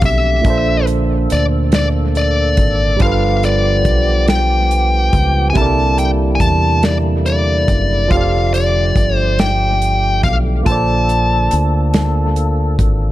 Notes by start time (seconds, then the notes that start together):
Already playing: D3 F3 A3 C4 D4 G4 A4
0.02 B1 E5, kick, closed hi-hat
0.41 A#2 A#3 A4, kick, closed hi-hat
0.46 A#1 D4 A4
0.50 C5
0.87 closed hi-hat
1.30 D2 D5, closed hi-hat
1.72 D5, snare, closed hi-hat
2.15 D5, closed hi-hat
2.57 G#1, kick, closed hi-hat
2.97 G3 D4, kick, closed hi-hat
3.01 G1 F3 B3 F4 G4 A4 F5
3.06 B4
3.43 D5, closed hi-hat
3.85 B1, kick, closed hi-hat
4.28 G5, snare, closed hi-hat
4.71 closed hi-hat
5.13 C#2, kick, closed hi-hat
5.50 C3 G#5
5.55 C2 D3 G3 A#3 E4 A4 A5, kick, closed hi-hat
5.60 A#4 D5
5.98 G5, closed hi-hat
6.35 G#5
6.40 E2 A5, kick, closed hi-hat
6.83 D5, snare, closed hi-hat
7.26 D5, closed hi-hat
7.68 F#1, kick, closed hi-hat
8.08 F1 F3 A3 F4 G4 F5, kick, closed hi-hat
8.12 G4 A4
8.17 D5
8.54 D5, closed hi-hat
8.96 G1, kick, closed hi-hat
9.17 C5
9.39 G5, snare, closed hi-hat
9.82 closed hi-hat
10.23 B1 F5, kick, closed hi-hat
10.63 A#1 A#3 F4 A4 A5, kick, closed hi-hat
10.67 A4 C5
10.72 D5
11.09 closed hi-hat
11.51 D2, closed hi-hat
11.94 snare, closed hi-hat
12.36 closed hi-hat
12.79 G#1, kick, closed hi-hat